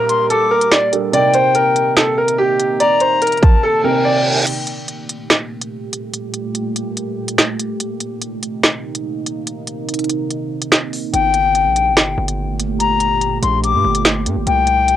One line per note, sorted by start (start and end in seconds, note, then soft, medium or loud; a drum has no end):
0.00 1.10 A#2 medium
0.00 0.88 G3 medium
0.00 0.89 A#3 medium
0.00 1.10 A#3 medium
0.00 0.88 D4 medium
0.00 0.89 G4 medium
0.00 1.10 G4 medium
0.00 0.28 A#4 medium
0.00 downlifter medium
0.09 0.29 C6 medium
0.09 closed hi-hat medium
0.30 0.48 A4 medium
0.30 0.69 D6 medium
0.30 closed hi-hat medium
0.51 0.69 A#4 medium
0.61 closed hi-hat medium
0.72 0.90 D5 medium
0.72 finger snap medium
0.72 snare loud
0.72 closed hi-hat medium
0.92 1.13 G3 soft
0.92 1.13 D4 soft
0.92 1.14 A4 soft
0.92 1.13 A#4 soft
0.92 closed hi-hat medium
1.12 3.80 C3 medium
1.12 4.44 C3 medium
1.12 4.44 A#3 medium
1.12 3.80 C4 medium
1.12 4.44 D#4 medium
1.12 3.81 D#4 medium
1.12 3.81 A#4 medium
1.12 1.31 D5 loud
1.12 1.93 G5 loud
1.12 closed hi-hat medium
1.34 1.52 C5 medium
1.34 closed hi-hat medium
1.55 1.94 A#4 medium
1.55 closed hi-hat medium
1.76 closed hi-hat medium
1.97 2.15 A4 medium
1.97 finger snap medium
1.97 snare loud
1.97 closed hi-hat medium
2.18 2.36 A#4 medium
2.28 closed hi-hat medium
2.38 2.78 G4 medium
2.60 closed hi-hat medium
2.80 2.98 D5 loud
2.80 3.39 A#5 loud
2.80 closed hi-hat medium
3.00 3.19 C5 medium
3.00 closed hi-hat medium
3.22 3.61 A#4 medium
3.22 closed hi-hat medium
3.27 closed hi-hat medium
3.32 closed hi-hat soft
3.37 closed hi-hat soft
3.42 3.82 A5 medium
3.42 kick medium
3.42 closed hi-hat medium
3.63 3.81 A4 medium
3.63 reverse cymbal medium
3.84 4.46 C3 soft
3.84 4.47 C4 soft
3.84 4.47 D#4 soft
3.84 4.02 A#4 medium
3.84 4.47 A#4 medium
3.84 4.43 G5 medium
4.05 4.23 D5 medium
4.47 7.77 A#2 medium
4.47 7.77 A3 medium
4.47 7.77 G4 medium
4.47 closed hi-hat medium
4.47 crash loud
4.67 closed hi-hat medium
4.88 closed hi-hat medium
5.09 closed hi-hat medium
5.30 finger snap medium
5.30 snare loud
5.30 closed hi-hat medium
5.61 closed hi-hat medium
5.93 closed hi-hat medium
6.14 closed hi-hat medium
6.34 closed hi-hat medium
6.55 closed hi-hat medium
6.76 closed hi-hat medium
6.97 closed hi-hat medium
7.28 closed hi-hat medium
7.38 finger snap medium
7.38 snare loud
7.38 closed hi-hat medium
7.60 closed hi-hat medium
7.80 11.10 C3 medium
7.80 11.10 A#3 medium
7.80 11.10 D#4 medium
7.80 closed hi-hat medium
8.00 closed hi-hat medium
8.21 closed hi-hat medium
8.43 closed hi-hat medium
8.63 finger snap medium
8.63 snare loud
8.63 closed hi-hat medium
8.95 closed hi-hat medium
9.26 closed hi-hat medium
9.47 closed hi-hat medium
9.67 closed hi-hat medium
9.89 closed hi-hat medium
9.94 closed hi-hat medium
9.99 closed hi-hat soft
10.04 closed hi-hat soft
10.09 closed hi-hat medium
10.30 closed hi-hat medium
10.62 closed hi-hat medium
10.72 finger snap medium
10.72 snare loud
10.72 closed hi-hat medium
10.93 open hi-hat medium
11.13 11.67 G1 loud
11.13 14.44 A#2 medium
11.13 14.44 A3 medium
11.13 14.43 G4 medium
11.13 11.93 G5 loud
11.13 closed hi-hat medium
11.34 closed hi-hat medium
11.55 closed hi-hat medium
11.66 11.93 A#1 loud
11.76 closed hi-hat medium
11.92 12.16 G1 loud
11.97 finger snap medium
11.97 snare loud
11.97 closed hi-hat medium
12.18 13.39 G1 loud
12.28 closed hi-hat medium
12.60 closed hi-hat medium
12.80 13.39 A#5 loud
12.80 closed hi-hat medium
13.00 closed hi-hat medium
13.22 closed hi-hat medium
13.43 13.75 A#1 loud
13.43 13.62 C6 medium
13.43 closed hi-hat medium
13.64 14.03 D6 loud
13.64 closed hi-hat medium
13.74 13.84 G2 loud
13.84 14.27 G1 loud
13.95 closed hi-hat medium
14.05 finger snap loud
14.05 snare loud
14.05 closed hi-hat medium
14.26 14.38 G2 loud
14.26 closed hi-hat medium
14.36 14.46 G1 loud
14.47 14.97 C2 loud
14.47 14.97 C3 medium
14.47 14.97 A#3 medium
14.47 14.97 D#4 medium
14.47 14.97 G5 loud
14.47 closed hi-hat medium
14.67 closed hi-hat medium
14.88 closed hi-hat medium